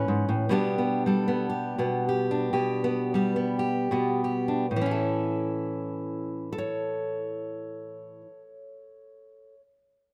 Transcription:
0.00 0.48 E3 medium
0.00 0.44 C#4 soft
0.00 0.44 E4 soft
0.00 0.44 B4 medium
0.08 0.28 G#2 medium
0.29 0.48 A2 medium
0.49 1.77 B2 medium
0.49 1.05 G3 medium
0.49 0.77 B3 medium
0.49 2.30 D4 medium
0.49 1.07 G4 medium
0.78 1.27 B3 soft
1.06 3.12 G3 medium
1.06 1.48 A4 soft
1.28 1.77 B3 soft
1.50 2.07 G4 medium
1.78 2.51 B2 soft
1.78 2.82 B3 medium
2.09 2.51 G4 soft
2.31 4.47 D4 soft
2.53 3.90 B2 medium
2.53 3.13 G4 soft
2.84 3.35 B3 medium
3.14 4.65 G3 soft
3.14 3.58 G4 medium
3.36 3.90 B3 soft
3.59 4.22 G4 medium
3.91 4.71 B2 medium
3.91 4.65 B3 soft
4.24 4.65 G4 soft
4.48 4.65 D4 soft
4.71 8.21 A2 soft
4.76 8.26 E3 medium
4.81 6.52 C#4 soft
4.86 6.58 E4 soft
4.91 6.53 A4 soft
6.53 9.54 A4 medium
6.58 9.60 C#5 medium

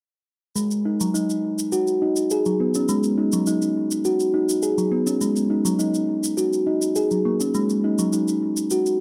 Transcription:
0.56 0.83 G#3 medium
0.56 shaker soft
0.71 shaker soft
0.85 0.98 D#4 medium
1.01 1.13 F#3 medium
1.01 shaker medium
1.14 1.71 D#4 medium
1.14 shaker soft
1.30 shaker soft
1.59 shaker medium
1.72 2.00 F#4 medium
1.72 shaker medium
1.87 shaker soft
2.02 2.29 D#4 medium
2.16 shaker medium
2.30 2.45 G#4 medium
2.30 shaker medium
2.45 2.59 F#3 medium
2.45 shaker soft
2.60 2.68 B3 medium
2.74 2.88 C#4 medium
2.74 shaker medium
2.89 3.16 G#3 medium
2.89 shaker soft
3.03 shaker soft
3.18 3.31 D#4 medium
3.32 3.46 F#3 medium
3.32 shaker medium
3.46 4.04 D#4 medium
3.46 shaker soft
3.62 shaker soft
3.91 shaker medium
4.05 4.32 F#4 medium
4.05 shaker soft
4.20 shaker soft
4.34 4.61 D#4 medium
4.49 shaker medium
4.63 4.77 G#4 medium
4.63 shaker medium
4.78 4.91 F#3 medium
4.78 shaker soft
4.92 5.00 B3 medium
5.07 5.20 C#4 medium
5.07 shaker medium
5.21 5.49 G#3 medium
5.21 shaker soft
5.36 shaker soft
5.50 5.64 D#4 medium
5.65 5.78 F#3 medium
5.65 shaker medium
5.79 6.36 D#4 medium
5.79 shaker medium
5.94 shaker soft
6.24 shaker medium
6.37 6.65 F#4 medium
6.37 shaker medium
6.53 shaker soft
6.67 6.94 D#4 medium
6.82 shaker medium
6.96 7.10 G#4 medium
6.96 shaker medium
7.11 7.24 F#3 medium
7.11 shaker soft
7.25 7.34 A#3 medium
7.40 7.54 C#4 medium
7.40 shaker medium
7.54 7.82 G#3 medium
7.54 shaker soft
7.70 shaker soft
7.84 7.97 D#4 medium
7.99 8.12 F#3 medium
7.99 shaker medium
8.13 8.69 D#4 medium
8.13 shaker medium
8.28 shaker soft
8.57 shaker medium
8.70 8.99 F#4 medium
8.70 shaker medium
8.86 shaker soft

